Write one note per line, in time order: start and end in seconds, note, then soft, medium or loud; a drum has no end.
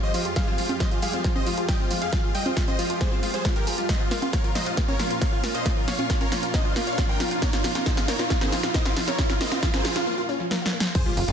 0.00 3.85 F2 medium
0.00 3.85 F3 medium
0.00 3.85 G#3 medium
0.00 0.07 F4 medium
0.00 3.85 G4 medium
0.00 0.11 C5 medium
0.00 0.11 D#5 loud
0.00 0.11 D#5 medium
0.00 riser medium
0.14 0.18 F3 medium
0.14 0.22 F4 medium
0.14 0.23 F4 medium
0.14 open hi-hat loud
0.25 0.34 F4 medium
0.25 0.32 G#4 medium
0.25 closed hi-hat soft
0.36 0.40 G3 loud
0.36 0.45 G#4 medium
0.36 0.45 F5 medium
0.36 0.45 F5 loud
0.36 kick loud
0.36 snare medium
0.36 closed hi-hat medium
0.47 0.51 C4 loud
0.47 0.56 F4 medium
0.58 0.65 F3 medium
0.58 0.67 F4 medium
0.58 open hi-hat loud
0.69 0.74 F4 medium
0.69 0.78 F4 medium
0.69 closed hi-hat soft
0.69 high conga medium
0.80 0.85 F3 medium
0.80 0.89 C5 medium
0.80 0.89 D#5 medium
0.80 kick loud
0.80 snare medium
0.80 closed hi-hat medium
0.91 1.00 F4 medium
0.91 0.98 G#4 medium
0.91 closed hi-hat soft
1.02 1.07 G3 loud
1.02 1.11 G#4 medium
1.02 1.11 F5 medium
1.02 open hi-hat loud
1.13 1.18 C4 loud
1.13 1.22 F4 medium
1.13 closed hi-hat soft
1.24 1.31 F3 medium
1.24 1.33 F4 medium
1.24 kick loud
1.24 snare medium
1.24 closed hi-hat medium
1.35 1.40 F4 medium
1.35 1.44 C5 medium
1.35 1.44 D#5 medium
1.35 1.44 D#5 loud
1.35 high conga medium
1.46 1.51 F3 medium
1.46 1.55 F4 medium
1.46 open hi-hat loud
1.58 1.66 F4 medium
1.58 1.64 G#4 medium
1.58 closed hi-hat soft
1.69 1.73 G3 loud
1.69 1.77 D#5 medium
1.69 1.77 G5 medium
1.69 1.77 G5 loud
1.69 kick loud
1.69 snare medium
1.69 closed hi-hat medium
1.80 1.84 C4 loud
1.80 1.88 F4 medium
1.91 1.97 F3 medium
1.91 1.99 F4 medium
1.91 open hi-hat loud
2.02 2.06 F4 medium
2.02 2.10 G#4 medium
2.02 2.10 F5 medium
2.02 2.10 F5 loud
2.02 closed hi-hat medium
2.13 2.17 F3 medium
2.13 2.21 F4 medium
2.13 kick loud
2.13 snare medium
2.13 closed hi-hat medium
2.24 2.32 F4 medium
2.24 2.30 G#4 medium
2.35 2.39 G3 loud
2.35 2.43 D#5 medium
2.35 2.43 G5 medium
2.35 open hi-hat loud
2.46 2.50 C4 loud
2.46 2.54 F4 medium
2.46 closed hi-hat soft
2.46 high conga medium
2.57 2.63 F3 medium
2.57 2.65 F4 medium
2.57 kick loud
2.57 snare medium
2.57 closed hi-hat medium
2.68 2.72 F4 medium
2.68 2.76 C5 medium
2.68 2.76 D#5 loud
2.68 2.76 D#5 medium
2.68 closed hi-hat soft
2.68 high conga medium
2.79 2.83 F3 medium
2.79 2.87 F4 medium
2.79 open hi-hat loud
2.90 2.98 F4 medium
2.90 2.96 G#4 medium
2.90 closed hi-hat soft
3.01 3.05 G3 loud
3.01 3.09 G#4 medium
3.01 3.09 C5 medium
3.01 kick loud
3.01 snare medium
3.01 closed hi-hat medium
3.12 3.16 C4 loud
3.12 3.20 F4 medium
3.23 3.27 G#3 medium
3.23 3.31 F4 medium
3.23 open hi-hat loud
3.34 3.38 G3 medium
3.34 3.42 G#4 medium
3.34 3.42 C5 medium
3.34 closed hi-hat medium
3.45 3.48 G#3 medium
3.45 3.53 F4 medium
3.45 kick loud
3.45 snare medium
3.45 closed hi-hat medium
3.56 3.59 F3 medium
3.56 3.64 G4 medium
3.56 3.64 A#4 medium
3.56 closed hi-hat soft
3.67 3.75 F4 medium
3.67 3.70 G#4 loud
3.67 open hi-hat loud
3.78 3.82 G3 medium
3.78 3.86 F4 medium
3.78 closed hi-hat soft
3.89 10.03 A#2 medium
3.89 3.93 F3 medium
3.89 10.03 A#3 medium
3.89 10.03 C#4 medium
3.89 10.03 F4 medium
3.89 3.97 C5 medium
3.89 3.97 D#5 loud
3.89 3.97 D#5 medium
3.89 kick loud
3.89 snare medium
3.89 closed hi-hat medium
4.00 4.08 F4 medium
4.00 4.06 F5 medium
4.11 4.15 A#3 loud
4.11 4.19 F4 medium
4.11 4.20 F4 medium
4.11 snare medium
4.11 open hi-hat loud
4.22 4.30 F4 medium
4.22 4.31 F4 medium
4.22 4.26 F4 loud
4.22 closed hi-hat soft
4.22 high conga medium
4.33 4.40 F3 medium
4.33 4.42 A#4 medium
4.33 4.42 C#5 medium
4.33 kick loud
4.33 snare medium
4.33 closed hi-hat medium
4.44 4.53 F4 medium
4.44 4.49 A#4 medium
4.44 closed hi-hat soft
4.55 4.60 F3 medium
4.55 4.64 C5 medium
4.55 4.64 D#5 medium
4.55 snare medium
4.55 open hi-hat loud
4.66 4.75 F4 medium
4.66 4.73 F5 medium
4.66 closed hi-hat soft
4.77 4.82 A#3 loud
4.77 4.86 F4 medium
4.77 kick loud
4.77 snare medium
4.77 closed hi-hat medium
4.88 4.93 F4 loud
4.88 4.97 A#4 medium
4.88 4.97 C#5 medium
4.88 high conga medium
4.99 5.06 F3 medium
4.99 5.08 F4 medium
4.99 snare medium
4.99 open hi-hat loud
5.10 5.19 F4 medium
5.10 5.15 A#4 medium
5.10 closed hi-hat medium
5.21 5.26 F3 medium
5.21 5.30 C#5 medium
5.21 5.30 F5 loud
5.21 5.30 F5 medium
5.21 kick loud
5.21 snare medium
5.21 closed hi-hat medium
5.33 5.41 F4 medium
5.33 5.39 F5 medium
5.43 5.48 A#3 loud
5.43 5.52 F4 medium
5.43 snare medium
5.43 open hi-hat loud
5.54 5.59 F4 medium
5.54 5.63 C5 medium
5.54 5.63 D#5 medium
5.54 5.63 D#5 loud
5.54 closed hi-hat medium
5.66 5.72 F3 medium
5.66 5.74 F4 medium
5.66 kick loud
5.66 snare medium
5.66 closed hi-hat medium
5.77 5.85 F4 medium
5.77 5.81 A#4 medium
5.88 5.92 F3 medium
5.88 5.96 C#5 medium
5.88 5.96 F5 medium
5.88 snare medium
5.88 open hi-hat loud
5.99 6.07 F4 medium
5.99 6.05 F5 medium
5.99 closed hi-hat medium
5.99 high conga medium
6.10 6.14 A#3 loud
6.10 6.18 F4 medium
6.10 kick loud
6.10 snare medium
6.10 closed hi-hat medium
6.21 6.25 F4 loud
6.21 6.29 A#4 medium
6.21 6.29 C#5 medium
6.21 6.29 C#5 loud
6.21 closed hi-hat soft
6.21 high conga medium
6.32 6.38 F3 medium
6.32 6.40 F4 medium
6.32 snare medium
6.32 open hi-hat loud
6.43 6.51 F4 medium
6.43 6.47 A#4 medium
6.43 closed hi-hat medium
6.54 6.58 F3 medium
6.54 6.62 C5 medium
6.54 6.62 D#5 medium
6.54 kick loud
6.54 snare medium
6.54 closed hi-hat medium
6.65 6.73 F4 medium
6.65 6.71 F5 medium
6.76 6.80 A#3 loud
6.76 6.84 F4 medium
6.76 snare medium
6.76 open hi-hat loud
6.87 6.91 F4 loud
6.87 6.95 C#5 medium
6.87 6.95 F5 medium
6.87 closed hi-hat medium
6.98 7.04 F3 medium
6.98 7.06 F4 medium
6.98 kick loud
6.98 snare medium
6.98 closed hi-hat medium
7.09 7.13 A#4 medium
7.09 7.17 A#4 medium
7.09 7.17 G5 medium
7.09 7.17 G5 loud
7.20 7.24 F3 medium
7.20 7.28 F4 medium
7.20 snare medium
7.20 open hi-hat loud
7.31 7.39 F4 medium
7.31 7.37 F5 medium
7.31 closed hi-hat medium
7.42 7.46 A#3 loud
7.42 7.50 A#4 medium
7.42 7.50 C#5 loud
7.42 kick loud
7.42 snare medium
7.42 closed hi-hat medium
7.53 7.57 F4 loud
7.53 7.61 F4 medium
7.53 snare medium
7.64 7.70 F3 medium
7.64 7.73 F4 medium
7.64 snare medium
7.64 open hi-hat loud
7.75 7.84 F4 medium
7.75 7.79 A#4 medium
7.75 snare medium
7.75 closed hi-hat medium
7.75 high conga medium
7.86 7.90 F3 medium
7.86 7.95 G#4 medium
7.86 7.95 C5 medium
7.86 kick loud
7.86 snare loud
7.86 closed hi-hat medium
7.97 8.06 F4 medium
7.97 8.04 F5 medium
7.97 snare medium
7.97 closed hi-hat soft
8.08 8.12 A#3 loud
8.08 8.17 A#4 medium
8.08 8.17 C#5 loud
8.08 8.17 C#5 medium
8.08 snare medium
8.08 open hi-hat loud
8.19 8.24 F4 loud
8.19 8.28 F4 medium
8.19 snare medium
8.19 closed hi-hat medium
8.30 8.37 F3 medium
8.30 8.39 F4 medium
8.30 kick loud
8.30 snare loud
8.30 closed hi-hat medium
8.41 8.50 G#4 medium
8.41 8.46 A#4 medium
8.41 8.50 C5 medium
8.41 snare medium
8.41 high conga medium
8.52 8.57 F3 medium
8.52 8.61 F4 medium
8.52 snare medium
8.52 open hi-hat medium
8.63 8.72 F4 medium
8.63 8.70 F5 medium
8.63 snare medium
8.63 closed hi-hat medium
8.74 8.79 A#3 loud
8.74 8.83 C5 medium
8.74 8.83 D#5 loud
8.74 kick loud
8.74 snare loud
8.74 closed hi-hat medium
8.85 8.94 F4 medium
8.85 8.90 F4 loud
8.85 snare medium
8.96 9.03 F3 medium
8.96 9.05 F4 medium
8.96 snare loud
8.96 open hi-hat loud
9.07 9.12 A#4 medium
9.07 9.16 A#4 medium
9.07 9.16 C#5 loud
9.07 snare medium
9.07 closed hi-hat medium
9.19 9.23 F3 medium
9.19 9.27 F4 medium
9.19 kick loud
9.19 snare loud
9.19 closed hi-hat medium
9.30 9.38 F4 medium
9.30 9.36 F5 medium
9.30 snare medium
9.30 closed hi-hat soft
9.41 9.45 A#3 loud
9.41 9.49 C5 medium
9.41 9.49 D#5 loud
9.41 9.49 D#5 medium
9.41 snare loud
9.41 open hi-hat loud
9.52 9.56 F4 loud
9.52 9.60 F4 medium
9.52 snare medium
9.52 closed hi-hat medium
9.52 high conga medium
9.63 9.69 F3 medium
9.63 9.71 F4 medium
9.63 kick loud
9.63 snare loud
9.63 closed hi-hat medium
9.74 9.82 G#4 medium
9.74 9.78 A#4 medium
9.74 9.82 C5 loud
9.74 9.82 C5 medium
9.74 snare medium
9.74 closed hi-hat soft
9.74 high conga medium
9.85 9.89 F3 medium
9.85 9.93 F4 medium
9.85 snare loud
9.85 open hi-hat loud
9.96 10.04 F4 medium
9.96 10.02 F5 medium
9.96 snare medium
9.96 closed hi-hat medium
10.07 10.11 A#3 loud
10.18 10.22 F4 loud
10.29 10.31 C#4 loud
10.40 10.44 F3 medium
10.51 10.57 A#3 medium
10.51 snare medium
10.62 10.66 F4 medium
10.62 snare medium
10.73 10.76 A#3 medium
10.80 10.90 F4 medium
10.80 snare loud
10.95 11.32 F3 medium
10.95 10.99 F3 loud
10.95 11.32 C4 medium
10.95 11.03 G#4 medium
10.95 11.32 G#4 loud
10.95 11.03 C5 loud
10.95 kick loud
10.95 closed hi-hat medium
10.95 crash loud
10.95 impact medium
11.06 11.10 G3 loud
11.06 11.14 F4 medium
11.17 11.25 F1 medium
11.17 11.25 F4 medium
11.17 open hi-hat loud
11.28 11.32 F1 medium
11.28 11.32 F4 medium
11.28 11.31 F4 loud
11.28 11.32 F4 medium
11.28 closed hi-hat medium